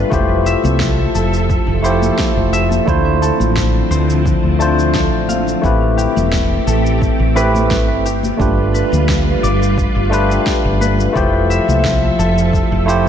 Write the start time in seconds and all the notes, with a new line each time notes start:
Already playing: A3 D4 F4 G4 B4 D5
0.10 F1 F3 A3 E4 F4 G4 A4 E5, kick, shaker
0.14 C5
0.46 E5, shaker
0.64 C2, high conga, low conga, shaker
0.80 kick, snare, shaker
1.15 F1 A4, shaker
1.34 shaker
1.50 kick, shaker
1.67 F1, high bongo
1.82 A3 E4 F4 G4 C5, shaker
2.02 high bongo, high conga, shaker
2.19 kick, snare, shaker
2.37 F1
2.53 E5, shaker
2.71 high bongo, high conga, shaker
2.86 D2 D3 F3 A3 C4 D4 E4 F4 C5, kick, shaker
3.22 A4, shaker
3.40 A1, high bongo, high conga, low conga, shaker
3.57 kick, snare, shaker
3.90 D2 C5, shaker
4.10 shaker
4.26 kick, shaker
4.44 D2
4.59 A3 D4 F4 C5 A5, high bongo, shaker
4.79 high bongo, shaker
4.94 A4, kick, snare, shaker
5.13 A1
5.29 F5, high conga, shaker
5.47 high bongo, shaker
5.62 A1 A3 C4 E4 G4, kick, shaker
5.66 B4
5.97 G4, shaker
6.16 E1, high conga, low conga, shaker
6.32 kick, snare, shaker
6.67 A1 A4, shaker
6.86 shaker
7.02 kick, shaker
7.20 A1, high bongo
7.35 A3 C4 E4 G4 B4, shaker
7.55 high bongo, high conga, shaker
7.71 kick, snare, shaker
7.89 G1
8.05 G3 F4 G4 B4, shaker
8.23 high bongo, high conga, shaker
8.37 G1 A3 D4 F4 G4, kick, shaker
8.42 B4
8.74 B4, shaker
8.92 D2, high bongo, high conga, low conga, shaker
9.09 kick, snare, shaker
9.43 G1 D5, shaker
9.63 shaker
9.78 kick, shaker
9.96 G1
10.10 A3 D4 F4 G4, high bongo, shaker
10.14 B4
10.30 high bongo, shaker
10.47 kick, snare, shaker
10.65 G1
10.81 B4, high conga, shaker
10.99 high bongo, shaker
11.13 F1 F3 A3 E4 F4 G4 A4 E5, kick, shaker
11.17 C5
11.50 E5, shaker
11.68 C2, high conga, low conga, shaker
11.84 kick, snare, shaker
12.19 F1 A4, shaker
12.38 shaker
12.53 kick, shaker
12.72 F1, high bongo
12.86 A3 E4 F4 G4 C5, shaker
13.05 high conga